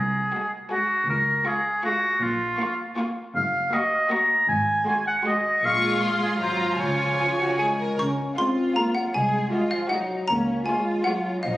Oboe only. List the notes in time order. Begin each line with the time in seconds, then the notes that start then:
Already playing: G#4
0.71 F#4
1.09 A#4
1.47 G#4
1.84 F#4
2.22 F4
3.35 F5
3.73 D#5
4.11 A#5
4.48 G#5
5.07 F#5
5.27 D#5
5.65 F5
6.23 G#4
6.41 C5
6.80 C#5